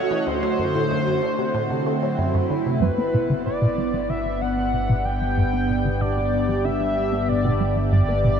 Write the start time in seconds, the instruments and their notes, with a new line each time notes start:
Already playing: analog synth pad A3 C#4 F#4, analog synth lead C#5
0.11 synth arpeggio sound E3
0.27 synth arpeggio sound D2, analog synth pad D3, analog synth lead C5
0.43 synth arpeggio sound F#3
0.59 synth arpeggio sound F#2
0.75 synth arpeggio sound A2
0.91 synth arpeggio sound F#2
1.07 synth arpeggio sound F#2
1.23 synth arpeggio sound D3
1.37 synth arpeggio sound C3, analog synth pad C4
1.42 analog synth pad E4
1.54 synth arpeggio sound A2
1.70 synth arpeggio sound C3
1.86 synth arpeggio sound A3
2.02 synth arpeggio sound F#3
2.18 synth arpeggio sound F#2
2.34 synth arpeggio sound F#2
2.50 synth arpeggio sound D3
2.66 synth arpeggio sound C3
2.82 analog synth bass G1, synth arpeggio sound G2, analog synth pad B3, analog synth lead B4
2.98 synth arpeggio sound B3
3.14 synth arpeggio sound B2
3.30 synth arpeggio sound D3
3.46 synth arpeggio sound B2, analog synth lead D5
3.62 synth arpeggio sound B2
3.69 analog synth pad D4
3.78 synth arpeggio sound G3
3.94 synth arpeggio sound F#3
4.10 synth arpeggio sound D3, analog synth lead E5
4.26 synth arpeggio sound F#3
4.30 analog synth pad G4
4.41 synth arpeggio sound D4, analog synth lead F#5
4.58 synth arpeggio sound B3
4.73 synth arpeggio sound B2
4.89 synth arpeggio sound B2
5.05 synth arpeggio sound G3, analog synth lead G5
5.22 synth arpeggio sound F#3
5.38 synth arpeggio sound G2
5.53 synth arpeggio sound B3
5.69 synth arpeggio sound B2
5.85 synth arpeggio sound D3
6.01 synth arpeggio sound B2, analog synth lead D5
6.17 synth arpeggio sound B2
6.33 synth arpeggio sound G3
6.49 synth arpeggio sound F#3
6.65 synth arpeggio sound D3, analog synth lead E5
6.81 synth arpeggio sound F#3
6.97 synth arpeggio sound D4
7.13 synth arpeggio sound B3
7.28 synth arpeggio sound B2, analog synth lead D5
7.44 synth arpeggio sound B2
7.61 synth arpeggio sound G3
7.76 synth arpeggio sound F#3
7.92 synth arpeggio sound G2, analog synth lead D5
8.08 synth arpeggio sound B3
8.24 synth arpeggio sound B2